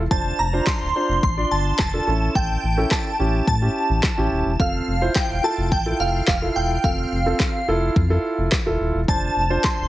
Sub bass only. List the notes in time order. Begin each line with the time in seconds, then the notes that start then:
0.11 F1
0.39 F1
0.81 D1
1.09 F1
1.23 A1
1.51 G1
1.79 F1
2.07 A1
2.35 A1
2.63 A1
3.20 A1
3.47 A2
3.90 A1
4.18 A1
4.31 D#1
4.46 E1
4.60 F1
4.88 F1
5.30 E1
5.58 F1
5.72 A1
6.00 F1
6.28 E1
6.56 E1
6.84 F1
7.12 F1
7.68 F1
7.96 F2
8.38 F1
8.66 E1
8.80 D#1
8.94 E1
9.08 F1
9.36 F1
9.78 D1